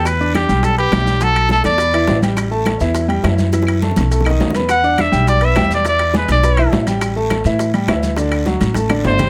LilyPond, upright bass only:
\new Staff \with { instrumentName = "Upright bass" } { \clef bass \time 4/4 \key e \minor \tempo 4 = 207 e,4. b,,4. b,,4~ | b,,4. e,4. a,,4~ | a,,4. e,4. fis,4~ | fis,4. b,,4. e,4~ |
e,4. b,,4. e,4~ | e,4. b,,4. a,,4~ | a,,4. a,4. d,4~ | d,4. a,,4. g,,4 | }